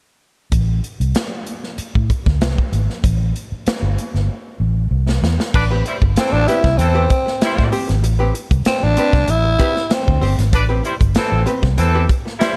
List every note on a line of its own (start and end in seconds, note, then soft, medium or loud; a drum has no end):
0.52 0.79 A1 medium
0.52 kick loud
0.52 closed hi-hat loud
0.84 closed hi-hat medium
1.00 1.13 C2 medium
1.00 closed hi-hat medium
1.15 snare loud
1.15 closed hi-hat loud
1.47 closed hi-hat medium
1.64 snare soft
1.78 muted fingered electric bass stroke soft
1.78 closed hi-hat medium
1.95 2.08 A2 medium
1.95 kick medium
2.10 kick medium
2.10 closed hi-hat medium
2.26 2.40 D2 medium
2.26 kick medium
2.26 snare soft
2.40 2.55 C2 medium
2.40 snare loud
2.40 closed hi-hat medium
2.58 kick medium
2.72 2.87 G#1 medium
2.72 closed hi-hat medium
2.90 snare soft
3.04 3.31 A1 loud
3.04 kick loud
3.04 closed hi-hat loud
3.36 closed hi-hat medium
3.52 muted fingered electric bass stroke soft
3.67 muted fingered electric bass stroke soft
3.67 snare loud
3.67 closed hi-hat loud
3.82 3.95 G1 medium
3.98 closed hi-hat medium
4.14 4.27 G1 medium
4.14 snare soft
4.60 4.87 A1 medium
4.91 5.18 C2 medium
5.09 snare medium
5.22 5.37 E2 medium
5.22 snare medium
5.40 snare medium
5.54 5.81 A1 loud
5.54 5.64 D4 loud
5.54 5.64 B4 loud
5.54 5.64 D5 loud
5.54 muted hollow-body jazz guitar stroke soft
5.54 kick loud
5.54 crash medium
5.71 5.84 C4 medium
5.71 5.84 G4 medium
5.71 5.85 B4 medium
5.85 5.96 G3 medium
5.85 5.96 E4 medium
5.85 5.96 C5 medium
5.85 muted hollow-body jazz guitar stroke soft
5.85 closed hi-hat medium
6.02 6.14 G1 loud
6.02 muted hollow-body jazz guitar stroke soft
6.02 kick medium
6.16 6.42 E3 medium
6.16 6.34 C4 medium
6.16 6.42 C4 medium
6.16 6.42 A4 loud
6.16 muted fingered electric bass stroke soft
6.16 snare loud
6.16 closed hi-hat loud
6.33 6.45 A1 medium
6.33 6.48 D4 loud
6.33 muted hollow-body jazz guitar stroke soft
6.47 6.69 C4 medium
6.47 6.79 E4 medium
6.47 6.64 G4 medium
6.47 6.63 B4 medium
6.47 closed hi-hat medium
6.64 6.77 C2 medium
6.64 muted hollow-body jazz guitar stroke soft
6.64 kick medium
6.64 snare soft
6.78 7.05 E2 medium
6.78 7.04 E3 medium
6.78 7.72 C4 medium
6.78 7.04 C4 medium
6.78 7.04 A4 loud
6.78 muted hollow-body jazz guitar stroke soft
6.78 closed hi-hat medium
6.95 7.08 C4 medium
6.95 7.08 G4 medium
6.95 7.09 B4 medium
7.09 muted hollow-body jazz guitar stroke soft
7.09 kick medium
7.09 closed hi-hat medium
7.26 muted hollow-body jazz guitar stroke soft
7.26 snare soft
7.41 7.67 G3 medium
7.41 7.67 E4 loud
7.41 7.67 C5 medium
7.41 muted hollow-body jazz guitar stroke soft
7.41 snare loud
7.41 closed hi-hat medium
7.57 7.71 A2 loud
7.57 muted hollow-body jazz guitar stroke soft
7.57 kick medium
7.57 snare soft
7.72 7.94 C4 medium
7.72 7.88 G4 medium
7.72 7.88 C5 medium
7.72 open hi-hat medium
7.88 8.04 G#1 medium
7.88 muted hollow-body jazz guitar stroke soft
7.88 snare soft
7.88 closed hi-hat medium
8.03 8.31 A1 medium
8.03 muted hollow-body jazz guitar stroke soft
8.03 closed hi-hat medium
8.19 8.33 C4 medium
8.19 8.33 G4 medium
8.19 8.34 B4 medium
8.35 muted hollow-body jazz guitar stroke soft
8.35 closed hi-hat medium
8.51 8.64 C2 medium
8.51 muted hollow-body jazz guitar stroke soft
8.51 kick medium
8.51 closed hi-hat medium
8.65 8.85 C4 medium
8.65 muted fingered electric bass stroke soft
8.65 snare loud
8.65 closed hi-hat loud
8.83 8.96 A1 medium
8.83 9.31 D4 loud
8.83 muted hollow-body jazz guitar stroke soft
8.97 9.18 C4 medium
8.97 9.14 G4 medium
8.97 9.13 B4 medium
8.97 closed hi-hat medium
9.13 9.26 C2 medium
9.13 kick medium
9.13 snare soft
9.28 9.55 A1 medium
9.28 9.92 E4 loud
9.28 muted hollow-body jazz guitar stroke soft
9.28 closed hi-hat medium
9.44 muted hollow-body jazz guitar stroke soft
9.59 9.81 C4 medium
9.59 9.75 G4 medium
9.59 9.74 B4 medium
9.59 kick medium
9.59 closed hi-hat medium
9.75 muted hollow-body jazz guitar stroke medium
9.75 snare soft
9.90 10.37 C4 medium
9.90 muted hollow-body jazz guitar stroke soft
9.90 snare loud
9.90 closed hi-hat medium
10.07 10.21 D2 medium
10.07 muted hollow-body jazz guitar stroke soft
10.07 kick medium
10.21 10.36 G1 loud
10.21 10.43 C4 medium
10.21 10.38 G4 medium
10.21 10.38 C5 medium
10.21 open hi-hat medium
10.38 10.53 G#1 loud
10.38 muted hollow-body jazz guitar stroke soft
10.38 snare soft
10.38 closed hi-hat medium
10.52 10.80 A1 loud
10.52 10.63 D4 loud
10.52 10.63 B4 loud
10.52 10.63 D5 loud
10.52 muted hollow-body jazz guitar stroke soft
10.52 kick loud
10.52 closed hi-hat loud
10.69 10.82 C4 medium
10.69 10.83 G4 medium
10.69 10.83 B4 medium
10.83 10.95 G3 medium
10.83 10.95 E4 medium
10.83 10.95 C5 medium
10.83 muted hollow-body jazz guitar stroke soft
10.83 closed hi-hat medium
11.00 11.14 G1 medium
11.00 muted hollow-body jazz guitar stroke medium
11.00 kick medium
11.00 closed hi-hat medium
11.15 11.41 E3 medium
11.15 11.42 C4 loud
11.15 11.41 A4 loud
11.15 muted fingered electric bass stroke soft
11.15 snare loud
11.15 closed hi-hat medium
11.32 11.45 A1 medium
11.32 muted hollow-body jazz guitar stroke soft
11.46 11.68 C4 medium
11.46 11.62 G4 medium
11.46 11.61 B4 medium
11.46 closed hi-hat medium
11.62 11.76 C2 medium
11.62 muted hollow-body jazz guitar stroke soft
11.62 kick medium
11.62 snare soft
11.77 12.05 E2 medium
11.77 12.03 E3 loud
11.77 12.03 C4 loud
11.77 12.03 A4 loud
11.77 muted hollow-body jazz guitar stroke soft
11.77 closed hi-hat medium
11.94 12.08 C4 medium
11.94 12.09 G4 medium
11.94 12.09 B4 medium
12.09 muted hollow-body jazz guitar stroke soft
12.09 kick medium
12.09 closed hi-hat medium
12.25 muted hollow-body jazz guitar stroke soft
12.25 snare soft
12.39 12.57 G3 loud
12.39 12.57 E4 loud
12.39 12.57 C5 medium
12.39 muted hollow-body jazz guitar stroke soft
12.39 snare loud
12.39 closed hi-hat medium